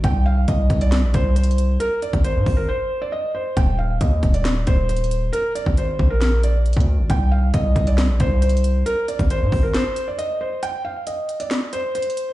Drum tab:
HH |x-----------x-----x--x--x-----x-----x-x-x-x-----|x-----x--x--x-----o-----------------------------|x-----------x-----x--x--x-----x-----x-x-x-x-----|x-----x-----x-----------x-----x-----x-x-x-------|
CP |------------------------x-----------------------|------------------------------------------------|------------------------x-----------------------|------------------------x-----------------------|
SD |------------------------o-----------------------|------------------------------------------------|------------------------o-----------------------|------------------------o-----------------------|
BD |o-----------o-----o-----------o-----------------|---------o--------o-----------------------------|o-----------o-----o-----------o-----------------|---------o--------o--------------------o--------|

HH |x-----------x-----x--x--x-----x-----x-x-x-x-----|x-----x--x--x-----o-----x-----x-----x-----------|x-----------x-----x--x--x-----x-----x-x-x-x-----|
CP |------------------------x-----------------------|------------------------x-----------------------|------------------------x-----------------------|
SD |------------------------o-----------------------|------------------------o-----------------------|------------------------o-----------------------|
BD |o-----------o-----o-----------o-----------------|---------o--------o-----------------------------|------------------------------------------------|